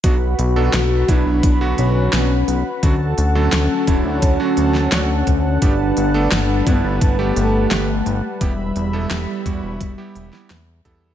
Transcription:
0.04 0.35 B1 loud
0.04 0.14 F#3 medium
0.04 0.14 B3 medium
0.04 0.14 D4 medium
0.04 1.10 F#4 loud
0.04 0.14 F#4 medium
0.04 2.80 F#4 medium
0.04 2.80 B4 medium
0.04 8.37 F#5 medium
0.04 2.80 B5 medium
0.04 kick loud
0.04 closed hi-hat medium
0.39 0.70 B1 loud
0.39 closed hi-hat medium
0.56 1.04 F#3 medium
0.56 1.04 B3 medium
0.56 1.04 D4 medium
0.56 1.04 A4 loud
0.73 1.04 B1 medium
0.73 snare loud
0.73 closed hi-hat loud
1.08 1.24 B1 loud
1.08 1.57 F#3 medium
1.08 1.57 B3 medium
1.08 1.66 D4 medium
1.08 1.57 D4 medium
1.08 1.57 E4 medium
1.08 kick loud
1.08 closed hi-hat medium
1.26 1.41 B1 medium
1.43 1.74 B1 medium
1.43 kick loud
1.43 closed hi-hat medium
1.61 2.09 D3 medium
1.61 2.09 F#3 medium
1.61 2.09 B3 medium
1.61 2.09 F#4 loud
1.78 2.09 B1 medium
1.78 2.69 C#4 loud
1.78 closed hi-hat medium
2.13 2.44 B1 medium
2.13 2.29 F#3 medium
2.13 2.29 B3 medium
2.13 2.29 D4 medium
2.13 2.29 F#4 loud
2.13 snare loud
2.13 closed hi-hat loud
2.48 2.63 B1 medium
2.48 closed hi-hat medium
2.83 3.14 D2 medium
2.83 2.93 F#3 medium
2.83 2.93 A3 medium
2.83 5.63 C#4 loud
2.83 2.93 D4 medium
2.83 5.59 F#4 medium
2.83 2.93 F#4 medium
2.83 5.59 A4 medium
2.83 5.59 A5 medium
2.83 kick loud
2.83 closed hi-hat medium
3.18 3.49 D2 medium
3.18 closed hi-hat medium
3.35 3.83 D3 medium
3.35 3.83 F#3 medium
3.35 3.83 A3 medium
3.35 3.83 A4 loud
3.52 3.68 D2 loud
3.52 snare loud
3.52 closed hi-hat loud
3.87 4.03 D1 medium
3.87 4.36 D3 medium
3.87 4.36 F#3 medium
3.87 4.36 A3 medium
3.87 4.36 E4 medium
3.87 kick loud
3.87 closed hi-hat medium
4.05 4.20 D2 medium
4.22 4.38 D2 medium
4.22 kick loud
4.22 closed hi-hat medium
4.40 4.88 D3 medium
4.40 4.88 F#3 medium
4.40 4.88 A3 medium
4.40 4.88 F#4 medium
4.57 4.88 D2 medium
4.57 closed hi-hat medium
4.75 snare soft
4.92 5.23 D2 medium
4.92 5.08 F#3 medium
4.92 5.08 A3 medium
4.92 5.08 D4 medium
4.92 5.08 F#4 medium
4.92 snare loud
4.92 closed hi-hat medium
5.27 5.58 D2 loud
5.27 kick medium
5.27 closed hi-hat medium
5.62 5.93 G1 loud
5.62 11.14 G3 medium
5.62 5.72 A3 medium
5.62 5.72 B3 medium
5.62 6.68 D4 loud
5.62 5.72 D4 medium
5.62 5.72 G4 medium
5.62 11.14 B4 medium
5.62 8.38 A5 medium
5.62 kick loud
5.62 closed hi-hat medium
5.97 6.28 G1 loud
5.97 closed hi-hat medium
6.14 6.62 A3 medium
6.14 6.62 B3 medium
6.14 6.62 D4 medium
6.14 6.62 A4 loud
6.32 6.63 G1 loud
6.32 snare loud
6.32 closed hi-hat medium
6.66 6.82 G1 loud
6.66 7.15 A3 medium
6.66 7.38 B3 medium
6.66 7.15 B3 medium
6.66 7.15 D4 medium
6.66 7.15 E4 medium
6.66 kick loud
6.66 closed hi-hat medium
6.84 7.00 G1 medium
7.01 7.32 G1 medium
7.01 kick loud
7.01 closed hi-hat loud
7.19 7.67 A3 medium
7.19 7.67 B3 medium
7.19 7.67 D4 medium
7.19 7.67 G4 medium
7.36 7.67 G1 medium
7.36 8.27 A3 loud
7.36 closed hi-hat medium
7.71 8.02 G1 medium
7.71 7.87 A3 medium
7.71 7.87 B3 medium
7.71 7.87 D4 medium
7.71 7.87 G4 loud
7.71 snare loud
7.71 closed hi-hat loud
8.06 8.21 G1 loud
8.06 closed hi-hat medium
8.41 8.72 E1 medium
8.41 11.06 G3 loud
8.41 8.51 G3 medium
8.41 8.51 B3 medium
8.41 8.51 E4 medium
8.41 8.51 G4 medium
8.41 11.14 E5 medium
8.41 11.14 B5 medium
8.41 kick loud
8.41 closed hi-hat medium
8.76 9.07 E1 loud
8.76 closed hi-hat medium
8.93 9.41 G3 medium
8.93 9.41 B3 medium
8.93 9.41 E4 medium
8.93 9.41 A4 loud
9.11 9.26 E1 loud
9.11 snare loud
9.11 closed hi-hat medium
9.46 9.61 E2 medium
9.46 9.94 G3 medium
9.46 9.94 B3 medium
9.46 9.94 E4 medium
9.46 9.94 F#4 medium
9.46 kick loud
9.46 closed hi-hat medium
9.63 9.78 E1 loud
9.81 9.96 E1 loud
9.81 kick loud
9.81 closed hi-hat medium
9.98 10.29 G3 medium
9.98 10.29 B3 medium
9.98 10.29 E4 medium
9.98 10.29 G4 loud
10.15 10.31 E1 medium
10.15 closed hi-hat medium
10.33 10.49 G3 medium
10.33 10.49 B3 medium
10.33 10.49 E4 medium
10.33 10.49 G4 medium
10.33 snare soft
10.50 10.81 E2 loud
10.50 snare loud
10.50 closed hi-hat medium
10.85 11.14 E2 medium
10.85 11.14 G3 medium
10.85 11.14 B3 medium
10.85 11.14 E4 medium
10.85 11.14 A4 loud
10.85 kick medium
10.85 closed hi-hat medium

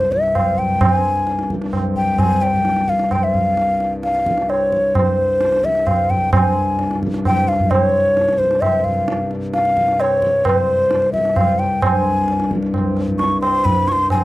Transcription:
0.00 0.81 C2 medium
0.00 0.81 G2 medium
0.00 0.14 C5 medium
0.00 tabla te medium
0.12 0.37 E5 medium
0.12 tabla ke medium
0.23 tabla te soft
0.35 0.60 F5 medium
0.35 tabla na medium
0.35 tabla ge medium
0.58 0.82 G5 medium
0.58 tabla ge soft
0.81 6.32 C2 medium
0.81 6.32 G2 medium
0.81 0.93 G5 medium
0.81 tabla na loud
0.81 tabla ge medium
0.93 1.51 G#5 medium
1.27 tabla te medium
1.39 tabla te medium
1.50 tabla ke soft
1.62 tabla te medium
1.73 tabla na medium
1.73 tabla ge medium
1.96 2.21 G5 medium
1.96 tabla ge soft
2.18 2.44 G#5 medium
2.18 tabla na medium
2.18 tabla ge medium
2.42 2.91 G5 medium
2.42 tabla te medium
2.54 tabla ge medium
2.65 tabla te medium
2.76 tabla te medium
2.88 3.14 F5 medium
2.88 tabla ke soft
2.99 tabla te medium
3.11 3.25 G5 medium
3.11 tabla na medium
3.11 tabla ge medium
3.23 3.92 F5 medium
3.34 tabla ge soft
3.57 tabla te medium
3.80 tabla te medium
4.03 4.51 F5 medium
4.03 tabla te medium
4.15 tabla te medium
4.26 tabla ke soft
4.38 tabla te medium
4.50 4.97 C#5 medium
4.50 tabla na medium
4.72 tabla ke soft
4.95 5.66 C5 medium
4.95 tabla na medium
4.95 tabla ge medium
5.41 tabla te medium
5.52 tabla te medium
5.64 5.88 E5 medium
5.64 tabla ke medium
5.75 tabla te medium
5.87 6.12 F5 medium
5.87 tabla na medium
5.87 tabla ge soft
6.10 6.33 G5 medium
6.10 tabla ge soft
6.33 11.80 C2 medium
6.33 11.81 G2 medium
6.33 6.98 G#5 medium
6.33 tabla na loud
6.33 tabla ge medium
6.79 tabla te medium
6.91 tabla te medium
7.03 tabla ke medium
7.14 tabla te medium
7.25 7.50 G5 medium
7.25 tabla na medium
7.25 tabla ge medium
7.48 7.73 F5 medium
7.48 tabla te medium
7.60 tabla ge medium
7.71 8.40 C#5 medium
7.71 tabla na medium
7.71 tabla ge medium
8.17 tabla te medium
8.29 tabla te medium
8.38 8.63 C5 medium
8.38 tabla ke medium
8.51 tabla te medium
8.61 8.86 E5 medium
8.61 tabla na medium
8.61 tabla ge medium
8.84 9.31 F5 medium
8.84 tabla ge medium
9.08 tabla te medium
9.31 tabla te medium
9.54 10.02 F5 medium
9.54 tabla te medium
9.65 tabla te medium
9.77 tabla ke medium
9.88 tabla te medium
10.00 10.47 C#5 medium
10.00 tabla na medium
10.22 tabla ke medium
10.45 10.58 B4 medium
10.45 tabla na medium
10.45 tabla ge medium
10.58 11.12 C5 medium
10.91 tabla te medium
11.02 tabla te medium
11.13 11.38 E5 medium
11.13 tabla ke medium
11.25 tabla te medium
11.36 11.60 F5 medium
11.36 tabla na medium
11.36 tabla ge medium
11.59 11.84 G5 medium
11.59 tabla te medium
11.82 14.24 C2 medium
11.82 14.24 G2 medium
11.82 12.51 G#5 medium
11.82 tabla na loud
11.82 tabla ge medium
12.28 tabla te medium
12.40 tabla te medium
12.51 tabla ke medium
12.63 tabla te medium
12.74 tabla na medium
12.74 tabla ge medium
12.97 tabla te medium
13.08 tabla ge soft
13.19 13.40 C#6 medium
13.19 tabla te medium
13.41 13.66 C6 medium
13.41 tabla na medium
13.65 13.90 B5 medium
13.65 tabla tin medium
13.65 tabla ge medium
13.88 13.93 C#6 medium
13.88 tabla te medium
13.92 14.11 C6 medium
14.10 14.24 G#5 medium
14.10 tabla na medium
14.10 tabla ge medium

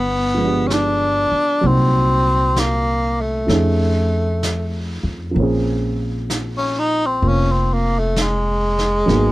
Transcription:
0.00 1.27 G1 medium
0.00 0.69 B3 medium
0.34 1.61 F3 soft
0.34 1.62 G#3 soft
0.40 1.64 B3 soft
0.40 1.65 D4 soft
0.45 1.66 G4 soft
0.67 0.74 C#4 medium
0.67 brush sweep soft
0.67 snare soft
0.67 hi-hat pedal soft
0.73 1.68 D4 medium
1.32 muted upright bass stroke soft
1.61 3.45 C2 medium
1.61 3.49 A#2 soft
1.61 3.48 F#3 medium
1.61 3.49 C4 soft
1.61 3.49 D#4 soft
1.61 brush sweep soft
1.66 2.61 C4 medium
1.66 3.51 F#4 medium
2.56 3.23 A#3 medium
2.56 brush sweep soft
2.56 snare soft
2.56 hi-hat pedal soft
3.21 5.06 A3 medium
3.47 5.00 F2 medium
3.47 5.30 F3 soft
3.47 5.36 A3 soft
3.47 5.37 C#4 soft
3.47 brush sweep soft
3.47 snare soft
3.51 5.37 D#4 soft
3.51 5.38 G#4 soft
4.43 brush sweep soft
4.43 snare soft
4.43 hi-hat pedal soft
5.03 5.33 F2 medium
5.31 9.05 F3 soft
5.31 7.20 A#3 soft
5.36 7.18 A#1 medium
5.36 7.21 C4 soft
5.36 brush sweep soft
5.40 9.10 C#4 soft
5.40 9.10 G#4 medium
6.30 brush sweep soft
6.30 snare soft
6.30 hi-hat pedal medium
6.57 6.81 C#4 medium
6.79 7.07 D#4 medium
7.06 7.30 C4 medium
7.22 9.04 F1 medium
7.22 9.06 A#3 soft
7.22 9.08 C4 soft
7.22 9.09 F4 soft
7.22 brush sweep soft
7.28 7.53 C#4 medium
7.52 7.75 C4 medium
7.73 8.00 A#3 medium
7.99 8.23 A3 medium
8.16 brush sweep soft
8.16 snare soft
8.16 hi-hat pedal soft
8.21 9.32 G#3 medium
8.78 snare soft
9.06 9.32 G#1 medium
9.06 9.32 F#3 medium
9.06 9.32 A#3 soft
9.06 9.32 B3 soft
9.06 9.32 D#4 soft
9.06 brush sweep soft
9.06 snare soft
9.11 9.32 G#4 medium

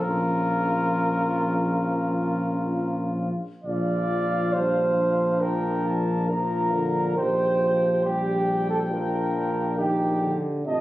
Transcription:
0.00 3.29 A#1 soft
0.00 3.29 F3 soft
0.00 3.33 C#4 soft
0.00 3.30 F4 soft
0.00 3.20 A#4 medium
3.64 7.13 A#1 soft
3.64 4.56 F3 soft
3.64 4.56 F4 soft
3.64 4.55 D5 medium
3.64 5.44 F5 soft
4.53 4.98 G3 soft
4.53 6.32 D4 soft
4.53 5.42 C5 medium
4.97 6.28 F3 soft
5.40 6.29 A#4 medium
5.40 5.88 G5 soft
5.86 6.31 A5 soft
6.29 6.74 F3 soft
6.29 7.17 F4 soft
6.29 7.16 A#4 medium
6.29 7.17 A#5 soft
6.73 7.19 D3 soft
7.17 10.34 A#1 soft
7.17 7.62 D#3 soft
7.17 8.94 G4 soft
7.17 8.03 C5 medium
7.17 8.03 G5 soft
7.61 8.06 F3 soft
8.04 8.92 G3 soft
8.04 8.69 G4 medium
8.04 10.34 G5 soft
8.69 8.79 A4 soft
8.91 9.77 F3 soft
8.91 9.81 D4 soft
8.91 9.77 A#4 medium
9.78 10.21 D#3 soft
9.78 10.38 D#4 soft
9.78 10.37 G4 medium
10.21 10.66 D3 soft
10.65 10.81 A1 soft
10.65 10.81 C3 soft
10.65 10.81 F4 soft
10.65 10.81 D#5 medium
10.65 10.81 A5 soft

